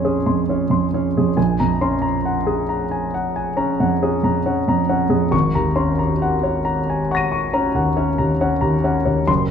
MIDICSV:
0, 0, Header, 1, 2, 480
1, 0, Start_track
1, 0, Tempo, 891530
1, 738, Time_signature, 9, 3, 24, 8
1, 1931, Tempo, 878477
1, 5166, End_track
2, 0, Start_track
2, 0, Title_t, "Grand piano"
2, 0, Program_c, 0, 0
2, 0, Control_c, 0, 64, 127
2, 0, Note_on_c, 0, 34, 45
2, 0, Note_on_c, 0, 41, 35
2, 0, Note_on_c, 0, 61, 38
2, 0, Note_on_c, 0, 68, 41
2, 0, Note_on_c, 0, 73, 42
2, 0, Note_on_c, 0, 80, 41
2, 0, Note_on_c, 0, 82, 34
2, 0, Note_on_c, 0, 84, 42
2, 25, Note_off_c, 0, 61, 0
2, 25, Note_off_c, 0, 68, 0
2, 25, Note_on_c, 0, 61, 38
2, 25, Note_on_c, 0, 68, 40
2, 86, Note_off_c, 0, 73, 0
2, 87, Note_off_c, 0, 41, 0
2, 142, Note_off_c, 0, 84, 0
2, 142, Note_on_c, 0, 84, 37
2, 144, Note_on_c, 0, 41, 35
2, 215, Note_off_c, 0, 61, 0
2, 215, Note_off_c, 0, 68, 0
2, 267, Note_on_c, 0, 61, 35
2, 270, Note_on_c, 0, 73, 39
2, 334, Note_off_c, 0, 84, 0
2, 335, Note_off_c, 0, 41, 0
2, 378, Note_on_c, 0, 41, 34
2, 382, Note_on_c, 0, 84, 39
2, 457, Note_off_c, 0, 61, 0
2, 459, Note_off_c, 0, 73, 0
2, 508, Note_on_c, 0, 61, 38
2, 508, Note_on_c, 0, 73, 39
2, 572, Note_off_c, 0, 41, 0
2, 573, Note_off_c, 0, 84, 0
2, 632, Note_on_c, 0, 68, 41
2, 634, Note_on_c, 0, 41, 35
2, 695, Note_off_c, 0, 61, 0
2, 695, Note_off_c, 0, 73, 0
2, 716, Note_off_c, 0, 34, 0
2, 737, Note_off_c, 0, 80, 0
2, 737, Note_on_c, 0, 80, 43
2, 741, Note_on_c, 0, 34, 47
2, 744, Note_off_c, 0, 68, 0
2, 745, Note_off_c, 0, 41, 0
2, 746, Control_c, 0, 64, 0
2, 747, Note_off_c, 0, 82, 0
2, 838, Control_c, 0, 64, 127
2, 860, Note_on_c, 0, 82, 46
2, 863, Note_on_c, 0, 41, 39
2, 925, Note_off_c, 0, 80, 0
2, 977, Note_on_c, 0, 61, 39
2, 977, Note_on_c, 0, 84, 45
2, 1045, Note_off_c, 0, 82, 0
2, 1047, Note_off_c, 0, 41, 0
2, 1087, Note_on_c, 0, 82, 40
2, 1092, Note_off_c, 0, 84, 0
2, 1163, Note_off_c, 0, 61, 0
2, 1214, Note_on_c, 0, 78, 41
2, 1279, Note_off_c, 0, 82, 0
2, 1328, Note_on_c, 0, 68, 41
2, 1403, Note_off_c, 0, 78, 0
2, 1449, Note_on_c, 0, 82, 42
2, 1522, Note_off_c, 0, 68, 0
2, 1569, Note_on_c, 0, 80, 36
2, 1642, Note_off_c, 0, 82, 0
2, 1690, Note_off_c, 0, 80, 0
2, 1692, Note_on_c, 0, 78, 45
2, 1809, Note_on_c, 0, 80, 46
2, 1883, Note_off_c, 0, 78, 0
2, 1921, Note_on_c, 0, 61, 43
2, 1921, Note_on_c, 0, 82, 48
2, 2002, Note_off_c, 0, 80, 0
2, 2049, Note_on_c, 0, 41, 41
2, 2049, Note_on_c, 0, 78, 46
2, 2118, Note_off_c, 0, 61, 0
2, 2118, Note_off_c, 0, 82, 0
2, 2170, Note_on_c, 0, 68, 47
2, 2172, Note_on_c, 0, 61, 38
2, 2242, Note_off_c, 0, 41, 0
2, 2242, Note_off_c, 0, 78, 0
2, 2286, Note_on_c, 0, 41, 38
2, 2288, Note_on_c, 0, 82, 42
2, 2362, Note_off_c, 0, 68, 0
2, 2363, Note_off_c, 0, 61, 0
2, 2407, Note_on_c, 0, 61, 39
2, 2408, Note_on_c, 0, 78, 42
2, 2479, Note_off_c, 0, 41, 0
2, 2480, Note_off_c, 0, 82, 0
2, 2528, Note_on_c, 0, 41, 40
2, 2531, Note_on_c, 0, 82, 47
2, 2598, Note_off_c, 0, 61, 0
2, 2599, Note_off_c, 0, 78, 0
2, 2645, Note_on_c, 0, 61, 40
2, 2645, Note_on_c, 0, 78, 45
2, 2717, Note_off_c, 0, 41, 0
2, 2719, Note_off_c, 0, 82, 0
2, 2755, Note_on_c, 0, 41, 40
2, 2756, Note_on_c, 0, 68, 44
2, 2835, Note_off_c, 0, 61, 0
2, 2835, Note_off_c, 0, 78, 0
2, 2863, Note_off_c, 0, 34, 0
2, 2874, Note_on_c, 0, 32, 54
2, 2878, Note_on_c, 0, 85, 64
2, 2879, Note_off_c, 0, 41, 0
2, 2880, Note_off_c, 0, 68, 0
2, 2894, Control_c, 0, 64, 0
2, 2967, Control_c, 0, 64, 127
2, 3003, Note_on_c, 0, 82, 46
2, 3004, Note_on_c, 0, 39, 43
2, 3073, Note_off_c, 0, 85, 0
2, 3117, Note_on_c, 0, 61, 42
2, 3117, Note_on_c, 0, 84, 41
2, 3197, Note_off_c, 0, 82, 0
2, 3198, Note_off_c, 0, 39, 0
2, 3242, Note_off_c, 0, 84, 0
2, 3244, Note_on_c, 0, 82, 44
2, 3315, Note_off_c, 0, 61, 0
2, 3370, Note_on_c, 0, 78, 51
2, 3438, Note_off_c, 0, 82, 0
2, 3486, Note_on_c, 0, 73, 44
2, 3561, Note_off_c, 0, 78, 0
2, 3604, Note_on_c, 0, 82, 46
2, 3678, Note_off_c, 0, 73, 0
2, 3739, Note_on_c, 0, 80, 41
2, 3797, Note_off_c, 0, 82, 0
2, 3853, Note_off_c, 0, 80, 0
2, 3857, Note_on_c, 0, 85, 39
2, 3859, Note_on_c, 0, 78, 52
2, 3877, Note_on_c, 0, 94, 41
2, 3888, Note_on_c, 0, 99, 38
2, 3962, Note_off_c, 0, 85, 0
2, 3970, Note_on_c, 0, 85, 47
2, 4044, Note_off_c, 0, 78, 0
2, 4088, Note_on_c, 0, 82, 52
2, 4091, Note_on_c, 0, 61, 48
2, 4160, Note_off_c, 0, 85, 0
2, 4203, Note_on_c, 0, 39, 42
2, 4207, Note_on_c, 0, 78, 45
2, 4277, Note_off_c, 0, 82, 0
2, 4278, Note_off_c, 0, 61, 0
2, 4324, Note_on_c, 0, 73, 45
2, 4326, Note_on_c, 0, 61, 47
2, 4393, Note_off_c, 0, 39, 0
2, 4395, Note_off_c, 0, 78, 0
2, 4443, Note_on_c, 0, 82, 46
2, 4445, Note_on_c, 0, 39, 39
2, 4511, Note_off_c, 0, 73, 0
2, 4512, Note_off_c, 0, 61, 0
2, 4566, Note_on_c, 0, 78, 50
2, 4568, Note_on_c, 0, 61, 46
2, 4630, Note_off_c, 0, 82, 0
2, 4631, Note_off_c, 0, 39, 0
2, 4676, Note_on_c, 0, 82, 48
2, 4680, Note_on_c, 0, 39, 42
2, 4753, Note_off_c, 0, 61, 0
2, 4753, Note_off_c, 0, 78, 0
2, 4802, Note_on_c, 0, 61, 46
2, 4805, Note_on_c, 0, 78, 48
2, 4870, Note_off_c, 0, 82, 0
2, 4872, Note_off_c, 0, 39, 0
2, 4918, Note_on_c, 0, 73, 44
2, 4920, Note_on_c, 0, 39, 41
2, 4996, Note_off_c, 0, 61, 0
2, 4998, Note_off_c, 0, 78, 0
2, 5017, Note_off_c, 0, 32, 0
2, 5037, Note_off_c, 0, 94, 0
2, 5038, Note_on_c, 0, 30, 55
2, 5039, Note_on_c, 0, 84, 72
2, 5043, Note_off_c, 0, 73, 0
2, 5043, Note_off_c, 0, 99, 0
2, 5044, Note_off_c, 0, 39, 0
2, 5052, Control_c, 0, 64, 0
2, 5126, Control_c, 0, 64, 127
2, 5166, Note_off_c, 0, 30, 0
2, 5166, Note_off_c, 0, 84, 0
2, 5166, End_track
0, 0, End_of_file